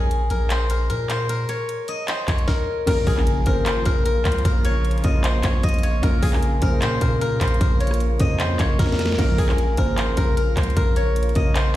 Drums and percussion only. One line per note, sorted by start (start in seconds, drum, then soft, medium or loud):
0.11 closed hi-hat medium
0.30 closed hi-hat medium
0.50 clap loud
0.50 closed hi-hat medium
0.70 closed hi-hat medium
0.90 closed hi-hat medium
1.10 clap medium
1.10 closed hi-hat medium
1.29 closed hi-hat medium
1.49 closed hi-hat medium
1.69 closed hi-hat medium
1.88 closed hi-hat medium
2.08 clap loud
2.08 closed hi-hat medium
2.28 kick medium
2.28 clap loud
2.28 closed hi-hat medium
2.38 closed hi-hat soft
2.48 kick loud
2.48 snare medium
2.87 kick loud
2.87 closed hi-hat medium
2.87 crash loud
3.07 kick medium
3.07 open hi-hat medium
3.17 clap medium
3.27 closed hi-hat medium
3.46 kick medium
3.46 closed hi-hat medium
3.66 clap loud
3.66 closed hi-hat medium
3.85 kick medium
3.85 closed hi-hat medium
4.06 closed hi-hat medium
4.25 kick medium
4.25 clap loud
4.25 closed hi-hat medium
4.32 closed hi-hat medium
4.38 closed hi-hat soft
4.45 kick loud
4.45 closed hi-hat medium
4.65 closed hi-hat medium
4.85 closed hi-hat medium
4.91 closed hi-hat medium
4.98 closed hi-hat soft
5.04 kick loud
5.04 closed hi-hat medium
5.24 clap loud
5.24 closed hi-hat medium
5.43 kick medium
5.43 clap loud
5.43 closed hi-hat medium
5.63 kick medium
5.63 closed hi-hat medium
5.69 closed hi-hat medium
5.74 closed hi-hat medium
5.79 closed hi-hat soft
5.83 closed hi-hat medium
6.03 kick loud
6.03 closed hi-hat medium
6.22 kick loud
6.22 open hi-hat medium
6.33 clap medium
6.43 closed hi-hat medium
6.62 kick loud
6.62 closed hi-hat medium
6.82 clap loud
6.82 closed hi-hat medium
7.01 kick medium
7.01 closed hi-hat medium
7.21 closed hi-hat medium
7.41 kick medium
7.41 clap medium
7.41 closed hi-hat medium
7.48 closed hi-hat medium
7.54 closed hi-hat soft
7.61 kick loud
7.61 closed hi-hat medium
7.80 closed hi-hat medium
7.80 open hi-hat medium
7.87 cross-stick medium
7.87 closed hi-hat medium
7.94 closed hi-hat medium
8.00 closed hi-hat medium
8.20 kick medium
8.20 closed hi-hat medium
8.40 clap loud
8.40 closed hi-hat medium
8.59 kick medium
8.59 clap loud
8.59 closed hi-hat medium
8.79 kick loud
8.79 snare medium
8.79 closed hi-hat medium
8.86 snare medium
8.92 snare medium
8.99 snare medium
8.99 closed hi-hat medium
9.06 snare loud
9.12 snare loud
9.19 kick loud
9.19 crash medium
9.38 kick loud
9.38 open hi-hat medium
9.49 clap medium
9.58 closed hi-hat medium
9.77 kick loud
9.77 closed hi-hat medium
9.98 clap loud
9.98 closed hi-hat medium
10.17 kick medium
10.17 closed hi-hat medium
10.37 closed hi-hat medium
10.57 kick medium
10.57 clap medium
10.57 closed hi-hat medium
10.63 closed hi-hat medium
10.70 closed hi-hat soft
10.77 kick loud
10.77 closed hi-hat medium
10.96 closed hi-hat medium
11.16 closed hi-hat medium
11.23 closed hi-hat medium
11.29 closed hi-hat soft
11.35 kick medium
11.35 closed hi-hat medium
11.55 clap loud
11.55 closed hi-hat medium